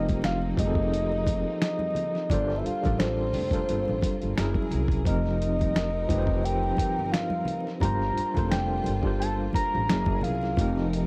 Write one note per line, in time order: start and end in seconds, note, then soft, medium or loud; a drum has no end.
0.00 0.54 F1 loud
0.00 0.34 F3 loud
0.00 2.27 F3 medium
0.00 2.27 A#3 medium
0.00 0.35 C4 loud
0.00 2.27 C4 medium
0.00 0.35 D#4 medium
0.00 2.27 D#4 medium
0.00 0.36 G4 loud
0.00 0.37 A#4 loud
0.08 kick medium
0.08 closed hi-hat soft
0.08 high conga medium
0.23 0.39 F5 loud
0.23 finger snap medium
0.23 snare loud
0.23 closed hi-hat medium
0.23 muted conga soft
0.42 muted conga soft
0.56 1.42 F1 medium
0.56 1.64 F3 medium
0.56 1.64 C4 medium
0.56 1.65 D#4 medium
0.56 1.65 G4 medium
0.56 1.58 D#5 loud
0.56 kick medium
0.56 closed hi-hat medium
0.56 high conga medium
0.56 low conga medium
0.61 0.66 G#4 medium
0.67 1.69 A4 medium
0.75 kick medium
0.92 closed hi-hat medium
0.92 muted conga soft
1.12 muted conga soft
1.26 kick loud
1.26 closed hi-hat medium
1.26 high conga medium
1.61 2.31 D#5 loud
1.61 finger snap medium
1.61 snare loud
1.61 closed hi-hat medium
1.61 muted conga soft
1.79 muted conga soft
1.79 high conga medium
1.95 closed hi-hat medium
1.95 low conga medium
2.15 snare soft
2.30 2.61 G1 loud
2.30 2.70 G3 medium
2.30 4.35 G3 medium
2.30 4.35 A#3 medium
2.30 2.71 D4 medium
2.30 4.35 F4 medium
2.30 2.71 F4 medium
2.30 2.71 A4 medium
2.30 2.72 A#4 medium
2.30 2.59 D5 loud
2.30 kick loud
2.30 closed hi-hat medium
2.30 muted conga soft
2.30 low conga medium
2.34 2.72 C5 loud
2.50 snare soft
2.58 2.67 E5 medium
2.66 3.00 F5 loud
2.66 closed hi-hat medium
2.82 3.34 G3 medium
2.82 3.35 D4 medium
2.82 3.35 F4 medium
2.82 3.36 A4 medium
2.82 3.36 A#4 medium
2.82 kick medium
2.82 closed hi-hat soft
2.82 high conga medium
2.86 3.29 A1 loud
2.86 3.37 D5 medium
2.99 4.71 C5 medium
2.99 finger snap medium
2.99 snare loud
2.99 closed hi-hat medium
2.99 muted conga soft
3.33 3.64 F1 medium
3.33 open hi-hat medium
3.33 high conga medium
3.33 low conga medium
3.51 4.36 G3 medium
3.51 4.37 D4 medium
3.51 4.37 F4 medium
3.51 4.38 A4 medium
3.51 4.38 A#4 medium
3.51 kick medium
3.51 closed hi-hat soft
3.55 4.38 C5 medium
3.69 3.85 G1 medium
3.69 closed hi-hat medium
3.88 4.02 A1 medium
3.88 muted conga soft
4.01 kick loud
4.01 snare soft
4.01 closed hi-hat medium
4.01 high conga medium
4.22 4.36 G1 medium
4.22 closed hi-hat soft
4.36 4.54 F#1 loud
4.36 4.93 F#3 medium
4.36 5.05 F#3 medium
4.36 4.93 C#4 medium
4.36 5.05 E4 medium
4.36 4.94 E4 medium
4.36 5.05 G#4 medium
4.36 4.94 G#4 medium
4.36 5.05 A#4 medium
4.36 finger snap loud
4.36 snare loud
4.36 closed hi-hat medium
4.40 4.95 A#4 medium
4.54 kick medium
4.54 muted conga soft
4.54 high conga medium
4.71 5.03 C2 medium
4.71 closed hi-hat medium
4.71 low conga medium
4.88 kick medium
4.88 closed hi-hat soft
5.04 6.06 F1 loud
5.04 5.86 F3 medium
5.04 7.79 F3 medium
5.04 5.87 C4 medium
5.04 7.79 C4 medium
5.04 5.87 D#4 medium
5.04 7.79 D#4 medium
5.04 5.88 G4 medium
5.04 7.79 A#4 medium
5.04 6.46 D#5 loud
5.04 kick loud
5.04 closed hi-hat medium
5.04 muted conga soft
5.04 low conga medium
5.09 5.88 A#4 medium
5.24 snare soft
5.24 muted conga soft
5.42 closed hi-hat medium
5.59 kick medium
5.59 closed hi-hat soft
5.59 high conga medium
5.75 finger snap loud
5.75 snare loud
5.75 closed hi-hat medium
5.75 muted conga soft
6.08 6.70 F1 loud
6.08 7.16 F3 medium
6.08 7.16 C4 medium
6.08 7.16 D#4 medium
6.08 7.17 G4 medium
6.08 kick medium
6.08 closed hi-hat medium
6.08 high conga medium
6.08 low conga medium
6.12 6.18 B4 medium
6.18 7.21 C5 medium
6.27 kick medium
6.43 7.13 G5 loud
6.43 closed hi-hat medium
6.43 muted conga soft
6.63 muted conga soft
6.77 kick medium
6.77 closed hi-hat medium
6.77 high conga medium
6.99 7.12 G1 medium
7.12 7.65 F5 loud
7.12 finger snap loud
7.12 snare loud
7.12 closed hi-hat medium
7.12 muted conga soft
7.30 muted conga soft
7.30 high conga medium
7.45 closed hi-hat medium
7.45 low conga medium
7.67 snare soft
7.80 8.12 G1 loud
7.80 8.21 G3 medium
7.80 9.86 G3 medium
7.80 9.86 A#3 medium
7.80 8.22 D4 medium
7.80 9.86 F4 medium
7.80 8.22 F4 medium
7.80 8.23 G4 medium
7.80 8.23 A#4 medium
7.80 8.46 A#5 loud
7.80 kick loud
7.80 closed hi-hat medium
7.80 low conga medium
7.85 8.24 C5 loud
7.99 snare soft
7.99 muted conga soft
8.17 muted upright bass stroke soft
8.17 closed hi-hat medium
8.34 8.81 F1 loud
8.34 8.86 G3 medium
8.34 8.87 D4 medium
8.34 8.87 F4 medium
8.34 8.88 A4 medium
8.34 8.88 A#4 medium
8.34 kick medium
8.34 closed hi-hat soft
8.34 high conga medium
8.39 8.89 C5 medium
8.50 9.16 G5 medium
8.50 finger snap medium
8.50 snare loud
8.50 closed hi-hat medium
8.50 muted conga soft
8.84 9.47 G1 medium
8.84 closed hi-hat medium
8.84 high conga medium
8.84 low conga medium
9.03 9.88 G3 medium
9.03 9.88 D4 medium
9.03 9.89 F4 medium
9.03 9.89 G4 medium
9.03 9.90 A#4 medium
9.03 kick medium
9.07 9.90 C5 medium
9.20 9.34 A5 loud
9.20 closed hi-hat medium
9.53 10.19 A#5 loud
9.53 muted upright bass stroke soft
9.53 kick medium
9.53 closed hi-hat medium
9.53 high conga medium
9.75 9.88 A1 loud
9.88 10.20 F#1 loud
9.88 10.57 E3 medium
9.88 10.44 F#3 medium
9.88 10.57 F#3 medium
9.88 10.45 C#4 medium
9.88 10.45 E4 medium
9.88 10.57 G#4 medium
9.88 10.46 G#4 medium
9.88 11.07 A#4 medium
9.88 finger snap loud
9.88 snare loud
9.88 closed hi-hat medium
9.88 muted conga soft
9.92 10.47 A#4 medium
10.06 kick medium
10.06 muted conga soft
10.06 high conga medium
10.21 10.54 C2 medium
10.21 10.88 F5 loud
10.21 closed hi-hat medium
10.21 low conga medium
10.43 snare soft
10.57 11.07 F1 loud
10.57 11.07 F3 medium
10.57 11.07 C4 medium
10.57 11.07 D#4 medium
10.57 11.07 G4 medium
10.57 kick loud
10.57 closed hi-hat medium
10.57 muted conga soft
10.57 low conga medium
10.61 11.07 A#4 loud
10.76 snare soft
10.76 muted conga soft
10.93 closed hi-hat medium